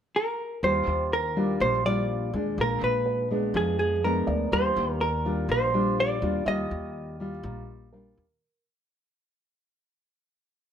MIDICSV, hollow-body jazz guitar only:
0, 0, Header, 1, 2, 480
1, 0, Start_track
1, 0, Key_signature, -3, "major"
1, 0, Tempo, 487013
1, 621, Time_signature, 4, 2, 24, 8
1, 10573, End_track
2, 0, Start_track
2, 0, Title_t, "Hollow-body jazz guitar"
2, 0, Program_c, 0, 26
2, 159, Note_on_c, 0, 70, 67
2, 627, Note_off_c, 0, 70, 0
2, 631, Note_on_c, 0, 72, 83
2, 1113, Note_off_c, 0, 72, 0
2, 1116, Note_on_c, 0, 70, 78
2, 1588, Note_off_c, 0, 70, 0
2, 1592, Note_on_c, 0, 72, 85
2, 1828, Note_off_c, 0, 72, 0
2, 1832, Note_on_c, 0, 74, 86
2, 2564, Note_off_c, 0, 74, 0
2, 2574, Note_on_c, 0, 70, 76
2, 2794, Note_off_c, 0, 70, 0
2, 2798, Note_on_c, 0, 71, 73
2, 3232, Note_off_c, 0, 71, 0
2, 3517, Note_on_c, 0, 68, 71
2, 3726, Note_off_c, 0, 68, 0
2, 3738, Note_on_c, 0, 68, 69
2, 3981, Note_off_c, 0, 68, 0
2, 3986, Note_on_c, 0, 70, 76
2, 4463, Note_off_c, 0, 70, 0
2, 4467, Note_on_c, 0, 72, 88
2, 4935, Note_off_c, 0, 72, 0
2, 4939, Note_on_c, 0, 70, 84
2, 5380, Note_off_c, 0, 70, 0
2, 5436, Note_on_c, 0, 72, 85
2, 5912, Note_off_c, 0, 72, 0
2, 5916, Note_on_c, 0, 74, 89
2, 6350, Note_off_c, 0, 74, 0
2, 6385, Note_on_c, 0, 75, 95
2, 8020, Note_off_c, 0, 75, 0
2, 10573, End_track
0, 0, End_of_file